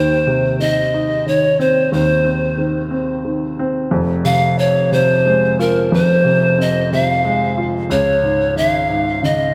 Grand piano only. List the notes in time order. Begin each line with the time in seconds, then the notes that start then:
Already playing: D#2 D#3
0.27 C3
0.59 D#3
0.94 D#4
1.26 D#3
1.59 C4
1.92 D#2 D#3
2.25 C4
2.58 D#3
2.91 C4
3.25 D#3
3.59 C4
3.91 F1 F2
4.25 C3
4.92 C3
5.26 G#3
5.59 F4
5.92 F1 F2
6.25 C3
6.58 C4
6.93 C3
7.25 G#3
7.58 F4
7.90 C#2
8.23 G#2
8.56 D#3
8.90 G#2
9.23 C#3